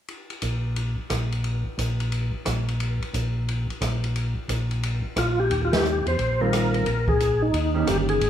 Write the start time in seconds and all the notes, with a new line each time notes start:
0.08 ride
0.30 ride
0.42 A#1, hi-hat pedal, ride
0.76 ride
1.10 A#1, cross-stick, hi-hat pedal, ride
1.32 ride
1.44 ride
1.78 A#1, hi-hat pedal, ride
2.00 ride
2.12 ride
2.45 A#1, cross-stick, hi-hat pedal, ride
2.68 ride
2.80 ride
3.02 ride
3.13 A#1, hi-hat pedal, ride
3.48 ride
3.70 ride
3.81 A#1, cross-stick, hi-hat pedal, ride
4.04 ride
4.16 ride
4.48 A#1, hi-hat pedal, ride
4.71 ride
4.83 ride
5.16 A#1 F4, cross-stick, hi-hat pedal, ride
5.40 G4
5.50 D#2, ride
5.65 F4
5.72 G4, snare, ride
5.85 hi-hat pedal
6.06 E2 C5, ride
6.19 A#1, ride
6.41 D#3 G3 C4 F4 A#4
6.53 cross-stick, hi-hat pedal, ride
6.74 A#4, ride
6.86 A#1, ride
7.08 G#4, kick
7.20 hi-hat pedal, ride
7.42 D#4
7.54 D#2, ride
7.74 D#3 A#3 C#4 G4
7.87 G1 G4, cross-stick, hi-hat pedal, ride
8.09 G#4, ride
8.21 G#1, ride